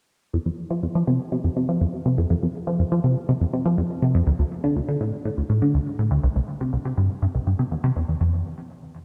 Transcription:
0.33 0.38 F2 medium
0.46 0.50 F2 medium
0.70 0.82 F3 medium
0.83 0.87 F2 medium
0.95 1.03 F3 medium
1.07 1.19 C3 medium
1.32 1.37 C3 medium
1.44 1.49 F2 medium
1.56 1.68 C3 medium
1.69 1.80 F3 medium
1.81 1.86 F2 medium
2.05 2.17 C3 medium
2.18 2.26 F2 loud
2.30 2.35 F2 loud
2.43 2.47 F2 medium
2.67 2.79 F3 medium
2.79 2.84 F2 medium
2.92 3.00 F3 medium
3.04 3.16 C3 medium
3.29 3.33 C3 medium
3.41 3.46 F2 medium
3.53 3.65 C3 medium
3.65 3.77 F3 medium
3.78 3.82 F2 medium
4.02 4.14 C3 medium
4.14 4.22 F2 loud
4.27 4.32 D2 medium
4.39 4.44 D2 medium
4.64 4.75 D3 medium
4.76 4.81 D2 medium
4.88 4.96 D3 medium
5.00 5.12 A2 medium
5.25 5.30 A2 medium
5.37 5.42 D2 medium
5.49 5.61 A2 medium
5.62 5.74 D3 medium
5.74 5.79 D2 medium
5.99 6.10 A2 medium
6.11 6.19 D2 loud
6.23 6.28 C2 loud
6.36 6.41 C2 medium
6.61 6.72 C3 medium
6.73 6.78 C2 medium
6.85 6.93 C3 medium
6.98 7.09 G2 medium
7.22 7.27 G2 medium
7.35 7.39 C2 medium
7.47 7.55 G2 medium
7.59 7.64 C3 medium
7.71 7.76 E2 medium
7.84 7.91 C3 loud
7.96 8.04 E2 medium
8.08 8.16 E2 medium
8.21 8.43 F2 medium

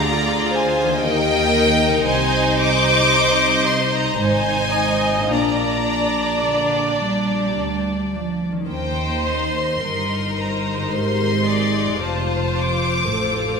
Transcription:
0.00 1.03 D2 medium
0.00 0.98 D3 medium
0.00 1.03 D3 medium
0.00 0.88 A#3 soft
0.00 1.02 F4 soft
0.00 1.03 F4 medium
0.00 1.03 G#4 medium
0.00 1.05 G#4 medium
0.00 0.53 D5 medium
0.00 0.54 A#5 medium
0.51 1.01 C5 medium
0.51 1.03 G#5 medium
0.84 2.02 D#3 medium
0.89 2.04 A#3 medium
0.93 1.96 D#4 soft
0.98 2.06 D#2 medium
0.98 4.19 D#4 medium
0.98 2.08 G4 medium
0.98 2.06 A#4 medium
0.98 2.04 D#5 medium
0.98 2.06 G5 loud
1.03 2.06 D#3 medium
1.88 5.27 C3 medium
1.92 5.29 C4 medium
1.97 5.32 D#4 medium
2.05 4.16 C2 medium
2.05 4.16 C3 medium
2.05 4.16 C5 loud
2.05 4.16 D#5 medium
2.05 2.60 G#5 loud
2.60 3.65 D6 loud
3.67 3.94 C6 medium
3.94 4.20 A#5 medium
4.19 5.29 G#1 medium
4.19 5.29 G#2 medium
4.19 5.30 D#4 medium
4.19 4.73 C5 medium
4.19 5.30 C5 medium
4.19 5.32 G#5 loud
4.74 5.31 D#5 medium
5.14 8.66 A#2 medium
5.19 8.68 D4 soft
5.23 8.71 F4 soft
5.23 8.64 A#4 soft
5.31 7.57 A#1 medium
5.31 6.35 A#2 medium
5.31 8.48 D4 medium
5.31 8.11 D5 medium
5.31 8.48 D5 medium
5.31 7.53 A#5 medium
6.46 6.98 D3 medium
7.02 8.12 G3 medium
7.56 8.48 D2 soft
8.12 8.70 F3 medium
8.52 10.87 D#3 soft
8.56 10.89 C#4 soft
8.61 10.82 D#4 soft
8.65 9.80 D#2 medium
8.65 10.93 A#4 soft
8.65 9.80 C5 medium
8.65 9.24 G5 medium
8.70 9.81 D#2 medium
8.70 9.81 D#4 soft
8.70 9.81 C5 medium
9.28 10.36 C6 medium
9.84 10.89 G1 medium
9.84 10.89 G2 medium
9.84 10.89 D#4 medium
9.84 10.38 A#4 soft
9.84 10.91 A#4 soft
10.38 10.91 C5 medium
10.38 10.92 A#5 medium
10.74 11.97 G#2 soft
10.78 11.86 C4 soft
10.83 11.91 D#4 soft
10.87 12.01 G#1 medium
10.87 12.01 G#2 medium
10.87 12.04 G4 soft
10.87 11.44 A#4 medium
10.92 12.00 D#4 medium
10.92 11.45 C5 medium
10.92 12.02 C6 medium
11.44 12.01 G#4 soft
11.44 12.01 D5 medium
11.83 13.60 F2 medium
11.87 13.60 C4 soft
11.92 13.60 D#4 soft
11.97 13.08 F1 medium
11.97 13.60 F4 soft
12.01 13.09 F2 medium
12.01 13.09 F4 medium
12.01 13.11 C5 medium
12.01 13.60 C5 medium
12.01 12.57 A5 medium
12.59 13.60 D6 medium
13.09 13.60 A1 medium
13.09 13.60 A2 medium
13.09 13.60 F4 medium
13.09 13.60 A4 medium

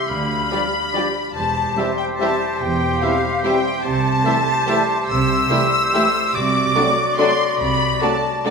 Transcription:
0.00 1.03 G4 medium
0.00 0.11 E5 medium
0.08 0.44 D2 medium
0.08 0.44 D3 medium
0.08 1.07 F5 medium
0.08 1.34 B5 loud
0.08 1.04 B5 loud
0.50 0.67 F3 medium
0.50 0.67 G3 medium
0.50 0.60 G3 medium
0.50 0.66 D4 medium
0.50 0.60 F4 medium
0.50 0.66 G4 medium
0.50 0.60 G4 medium
0.50 0.66 D5 medium
0.50 0.60 D5 medium
0.93 1.08 F3 medium
0.93 1.08 G3 medium
0.93 1.03 G3 medium
0.93 1.09 D4 medium
0.93 1.03 F4 medium
0.93 1.08 G4 medium
0.93 1.03 G4 medium
0.93 1.09 D5 medium
0.93 1.03 D5 medium
1.34 1.69 E1 medium
1.34 1.69 E2 medium
1.34 3.81 G4 medium
1.34 3.81 C5 medium
1.34 1.97 A5 loud
1.34 1.95 A5 loud
1.76 1.93 E3 medium
1.76 1.93 G3 medium
1.76 1.85 G3 medium
1.76 1.92 C4 medium
1.76 1.85 E4 medium
1.76 1.92 G4 medium
1.76 1.86 G4 medium
1.76 1.86 C5 medium
1.76 1.93 E5 medium
1.99 2.07 G5 medium
1.99 2.06 G5 medium
2.19 2.35 E3 medium
2.19 2.35 G3 medium
2.19 2.29 G3 medium
2.19 2.34 C4 medium
2.19 2.28 E4 medium
2.19 2.34 G4 medium
2.19 2.29 G4 medium
2.19 2.29 C5 medium
2.19 2.35 E5 medium
2.19 2.53 A5 loud
2.19 2.63 A5 medium
2.54 2.61 A5 medium
2.60 2.95 E1 medium
2.60 2.95 E2 medium
2.60 3.02 G5 loud
2.60 3.04 G5 loud
3.02 3.18 E3 medium
3.02 3.11 G3 medium
3.02 3.18 G3 medium
3.02 3.18 C4 medium
3.02 3.11 E4 medium
3.02 3.17 G4 medium
3.02 3.10 G4 medium
3.02 3.10 C5 medium
3.02 3.18 E5 medium
3.02 3.44 F5 loud
3.02 3.47 F5 loud
3.44 3.60 E3 medium
3.44 3.52 G3 medium
3.44 3.60 G3 medium
3.44 3.59 C4 medium
3.44 3.52 E4 medium
3.44 3.53 G4 medium
3.44 3.59 G4 medium
3.44 3.53 C5 medium
3.44 3.60 E5 medium
3.44 3.87 G5 loud
3.44 3.84 G5 loud
3.84 4.18 C2 loud
3.84 4.19 C3 loud
3.84 6.30 G4 medium
3.84 6.36 C5 medium
3.84 5.10 A5 loud
3.84 5.09 A5 loud
4.25 4.40 E3 medium
4.25 4.41 G3 medium
4.25 4.41 A3 medium
4.25 4.33 A3 medium
4.25 4.33 E4 medium
4.25 4.33 G4 medium
4.25 4.40 A4 medium
4.25 4.34 C5 medium
4.25 4.41 E5 medium
4.67 4.83 E3 medium
4.67 4.83 G3 medium
4.67 4.82 A3 medium
4.67 4.76 A3 medium
4.67 4.76 E4 medium
4.67 4.75 G4 medium
4.67 4.82 A4 medium
4.67 4.75 C5 medium
4.67 4.83 E5 medium
5.10 5.44 C2 medium
5.10 5.44 C3 loud
5.10 6.32 E6 loud
5.10 6.36 E6 loud
5.50 5.66 E3 medium
5.50 5.66 G3 medium
5.50 5.66 A3 medium
5.50 5.59 A3 medium
5.50 5.59 E4 medium
5.50 5.58 G4 medium
5.50 5.66 A4 medium
5.50 5.58 C5 medium
5.50 5.67 E5 medium
5.92 6.07 E3 medium
5.92 6.07 G3 medium
5.92 6.03 A3 medium
5.92 6.09 A3 medium
5.92 6.02 E4 medium
5.92 6.02 G4 medium
5.92 6.09 A4 medium
5.92 6.02 C5 medium
5.92 6.09 E5 medium
6.34 6.68 C2 medium
6.34 6.69 C3 loud
6.34 8.50 F#4 medium
6.34 8.50 D5 medium
6.34 7.19 D6 loud
6.34 7.20 D6 loud
6.75 6.90 C3 medium
6.75 6.91 F#3 medium
6.75 6.91 A3 medium
6.75 6.84 A3 medium
6.75 6.84 D4 medium
6.75 6.84 F#4 medium
6.75 6.92 A4 medium
6.75 6.84 D5 medium
6.75 6.91 D5 medium
7.17 7.32 C3 medium
7.17 7.32 F#3 medium
7.17 7.34 A3 medium
7.17 7.27 A3 medium
7.17 7.27 D4 medium
7.17 7.27 F#4 medium
7.17 7.33 A4 medium
7.17 7.27 D5 medium
7.17 7.34 D5 medium
7.17 7.59 C6 loud
7.17 7.62 C6 loud
7.59 7.94 C2 loud
7.59 7.94 C3 loud
7.59 8.00 B5 loud
7.59 8.01 B5 loud
8.01 8.16 C3 medium
8.01 8.16 F#3 medium
8.01 8.17 A3 medium
8.01 8.09 A3 medium
8.01 8.10 D4 medium
8.01 8.09 F#4 medium
8.01 8.17 A4 medium
8.01 8.09 D5 medium
8.01 8.17 D5 medium
8.01 8.45 A5 loud
8.01 8.44 A5 medium
8.44 8.50 C3 medium
8.44 8.50 F#3 medium
8.44 8.50 A3 medium
8.44 8.50 D4 medium
8.44 8.50 F#4 medium
8.44 8.50 A4 medium
8.44 8.50 D5 medium

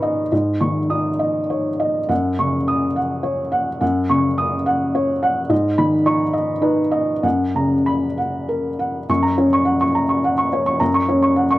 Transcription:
0.00 0.27 G#2 medium
0.00 0.34 D#3 soft
0.00 0.34 D#4 soft
0.00 0.20 B4 soft
0.00 0.02 D#5 soft
0.00 0.31 D#5 soft
0.00 0.33 B5 soft
0.00 0.34 C#6 soft
0.32 2.06 G#2 soft
0.32 0.79 D#5 soft
0.61 1.08 D#3 soft
0.61 1.08 C#6 soft
0.90 1.38 D#4 soft
0.90 1.20 D#6 soft
1.19 1.68 D#5 soft
1.50 1.98 C#5 soft
1.80 2.10 D#5 soft
2.09 3.77 F#2 soft
2.09 2.56 F#5 soft
2.39 2.85 C#3 soft
2.39 2.85 C#6 soft
2.68 2.96 D#6 soft
2.96 3.41 F#5 soft
3.23 3.69 C#5 soft
3.52 3.79 F#5 soft
3.81 5.47 F#2 soft
3.81 4.27 F#5 soft
4.10 4.55 C#3 soft
4.10 4.55 C#6 soft
4.38 4.66 D#6 medium
4.66 5.11 F#5 soft
4.95 5.40 C#5 soft
5.23 5.51 F#5 medium
5.49 7.19 G#2 medium
5.49 5.95 D#5 medium
5.78 6.23 D#3 soft
5.78 6.23 B5 medium
6.06 6.51 D#4 medium
6.06 6.34 C#6 medium
6.33 6.80 D#5 medium
6.62 7.11 D#4 soft
6.62 7.10 B4 medium
6.91 7.23 D#5 medium
7.23 9.05 F#2 soft
7.23 7.74 F#5 soft
7.55 8.05 C#3 soft
7.55 8.06 A#5 soft
7.86 8.18 B5 soft
8.18 8.67 F#5 soft
8.49 8.97 A#4 soft
8.79 9.09 F#5 soft
9.09 10.76 F#2 soft
9.09 9.32 C#6 medium
9.23 9.46 A#5 soft
9.38 9.84 C#4 soft
9.38 9.61 C#5 soft
9.53 9.75 C#6 soft
9.65 9.89 F#5 soft
9.81 10.04 C#6 soft
9.95 10.18 A#5 soft
10.09 10.32 C#6 soft
10.24 10.46 F#5 soft
10.38 10.60 C#6 soft
10.53 10.75 C#5 soft
10.66 10.89 C#6 soft
10.80 11.59 F#2 soft
10.80 11.03 A#5 soft
10.94 11.17 C#6 medium
11.08 11.54 C#4 soft
11.08 11.32 C#5 soft
11.23 11.46 C#6 soft
11.36 11.59 F#5 soft
11.51 11.59 C#6 medium

